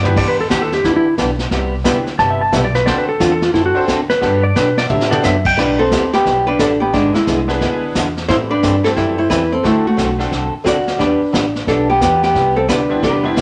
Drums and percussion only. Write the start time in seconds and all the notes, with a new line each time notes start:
0.05 floor tom
0.16 brush sweep, kick, snare, crash
0.50 kick, snare, hi-hat pedal
0.72 snare
0.84 brush sweep, kick, snare
1.17 kick, snare, hi-hat pedal
1.39 snare
1.51 brush sweep, kick, snare
1.85 kick, snare, hi-hat pedal
2.07 snare
2.19 brush sweep, kick, snare
2.53 kick, snare, hi-hat pedal
2.74 snare
2.86 brush sweep, kick, snare
3.20 kick, snare, hi-hat pedal
3.42 snare
3.54 brush sweep, kick, snare
3.88 kick, snare, hi-hat pedal
4.09 snare
4.22 brush sweep, kick, snare
4.56 kick, snare, hi-hat pedal
4.77 snare
4.90 mid tom
5.01 snare
5.12 mid tom
5.23 snare, hi-hat pedal
5.45 kick, crash
5.58 brush sweep, kick, snare
5.91 kick, snare, hi-hat pedal
6.13 snare
6.26 brush sweep, kick, snare
6.59 kick, snare, hi-hat pedal
6.93 brush sweep, kick, snare
7.15 snare
7.27 kick, snare, hi-hat pedal
7.49 snare
7.61 brush sweep, kick, snare
7.95 kick, snare, hi-hat pedal
8.17 snare
8.29 brush sweep, kick, snare
8.63 kick, snare, hi-hat pedal
8.84 snare
8.96 brush sweep, kick, snare
9.30 kick, snare, hi-hat pedal
9.64 brush sweep, kick, snare
9.98 kick, snare, hi-hat pedal
10.20 snare
10.32 brush sweep, kick, snare
10.66 kick, snare, hi-hat pedal
10.87 snare
11.00 brush sweep, kick, snare
11.33 kick, snare, hi-hat pedal
11.55 snare
11.67 brush sweep, kick, snare
12.01 kick, snare, hi-hat pedal
12.23 snare
12.35 brush sweep, kick, snare
12.69 kick, snare, hi-hat pedal
13.03 brush sweep, kick, snare
13.37 kick, snare, hi-hat pedal